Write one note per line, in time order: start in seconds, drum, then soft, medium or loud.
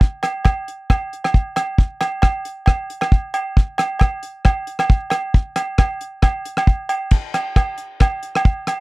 0.01 kick medium
0.23 cross-stick medium
0.23 closed hi-hat soft
0.23 low agogo medium
0.45 kick medium
0.45 cross-stick medium
0.45 low agogo medium
0.68 closed hi-hat soft
0.90 kick medium
0.90 cross-stick medium
0.90 low agogo medium
1.13 closed hi-hat soft
1.24 cross-stick medium
1.24 low agogo medium
1.34 kick medium
1.56 cross-stick medium
1.56 closed hi-hat soft
1.56 low agogo medium
1.78 kick medium
2.01 cross-stick medium
2.01 closed hi-hat soft
2.01 low agogo medium
2.22 kick medium
2.22 cross-stick medium
2.22 low agogo medium
2.45 closed hi-hat soft
2.66 kick medium
2.66 cross-stick medium
2.66 low agogo medium
2.90 closed hi-hat soft
3.01 cross-stick medium
3.01 low agogo medium
3.12 kick medium
3.34 closed hi-hat soft
3.34 low agogo medium
3.57 kick medium
3.78 cross-stick medium
3.78 closed hi-hat soft
3.78 low agogo medium
3.99 kick medium
3.99 cross-stick medium
3.99 low agogo medium
4.23 closed hi-hat soft
4.45 kick medium
4.45 cross-stick medium
4.45 low agogo medium
4.67 closed hi-hat soft
4.79 cross-stick medium
4.79 low agogo medium
4.90 kick medium
5.10 cross-stick medium
5.10 closed hi-hat soft
5.10 low agogo medium
5.34 kick medium
5.56 cross-stick medium
5.56 closed hi-hat soft
5.56 low agogo medium
5.78 kick medium
5.78 cross-stick medium
5.78 low agogo medium
6.01 closed hi-hat soft
6.22 kick medium
6.22 cross-stick medium
6.22 low agogo medium
6.45 closed hi-hat soft
6.57 cross-stick medium
6.57 low agogo medium
6.67 kick medium
6.89 closed hi-hat soft
6.89 low agogo medium
7.11 kick medium
7.11 crash medium
7.34 cross-stick medium
7.34 closed hi-hat soft
7.34 low agogo medium
7.56 kick medium
7.56 cross-stick medium
7.56 low agogo medium
7.78 closed hi-hat soft
8.00 kick medium
8.00 cross-stick medium
8.00 low agogo medium
8.23 closed hi-hat soft
8.35 cross-stick medium
8.35 low agogo medium
8.45 kick medium
8.67 cross-stick medium
8.67 closed hi-hat soft
8.67 low agogo medium